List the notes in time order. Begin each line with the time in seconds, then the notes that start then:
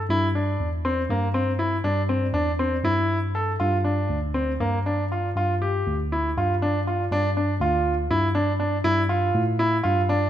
0.10 G2 E4
0.35 D4
0.60 E2
0.85 C4
1.10 G2 A#3
1.34 C4
1.59 E4
1.84 G2 D4
2.09 C4
2.34 E2 D4
2.59 C4
2.84 G2 E4
3.35 A4
3.60 G2 F4
3.84 D4
4.09 D2
4.34 C4
4.60 G2 A#3
4.86 D4
5.12 F4
5.36 G2 F4
5.62 G4
5.87 D2
6.12 E4
6.37 G2 F4
6.62 D4
6.87 F4
7.11 G2 D4
7.37 D4
7.61 D2 F4
8.10 G2 E4
8.35 D4
8.60 D4
8.84 G2 E4
9.09 F4
9.35 A2
9.59 E4
9.83 G2 F4
10.09 D4